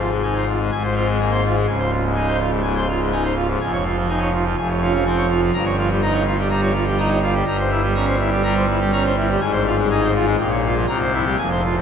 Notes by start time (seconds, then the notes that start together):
Already playing: G#1 G#2
0.11 G#3
0.23 D#4 G#5
0.36 C5
0.48 F4
0.60 G#3
0.72 G#1 G#2 G#5
0.83 C5
0.95 C4 F4
1.07 G#3
1.19 A#3 G#5
1.31 C5
1.44 F4
1.55 G#3
1.67 C#1 C#2 G#5
1.79 C5
1.91 F4
2.04 G#2
2.15 D#4 G#5
2.28 C5
2.39 F4
2.50 G#2
2.63 G#2 G#5
2.76 C5
2.88 F4
3.00 G#2
3.12 D#4 G#5
3.24 C5
3.36 F4
3.48 G#2
3.61 F1 F2 G#5
3.73 C#5
3.85 F4
3.96 F3
4.09 D#4 G#5
4.21 C#5
4.34 F4
4.45 F3
4.57 F1 F2 G#5
4.69 C#5
4.82 C#4 F4
4.93 F3
5.05 C4 G#5
5.17 C#5
5.29 F4
5.42 F3
5.54 G1 G2 A#5
5.65 C#5
5.78 F4
5.90 G3
6.02 D#4 A#5
6.13 C#5
6.26 F4
6.39 G3
6.50 G3 A#5
6.62 C#5
6.73 F4
6.86 G3
6.99 D#4 A#5
7.10 C#5
7.22 F4
7.34 G3
7.46 G1 G2 A#5
7.59 C5
7.71 E4
7.83 G3
7.95 C#4 A#5
8.07 C5
8.20 E4
8.31 G3
8.44 G3 A#5
8.56 C5
8.69 E4
8.80 G3
8.92 C#4 A#5
9.05 C5
9.18 E4
9.30 G3
9.41 G#1 G#2 G#5
9.53 C5
9.66 F4
9.78 G#3
9.91 D#4 G#5
10.03 C5
10.15 F4
10.26 G#3
10.38 A#1 A#2 G5
10.51 C#5
10.64 F4
10.76 F3
10.87 C2 C3 A#5
11.01 C5
11.13 E4
11.25 G3
11.38 F1 F2 G#5
11.51 C5
11.65 F4
11.77 C3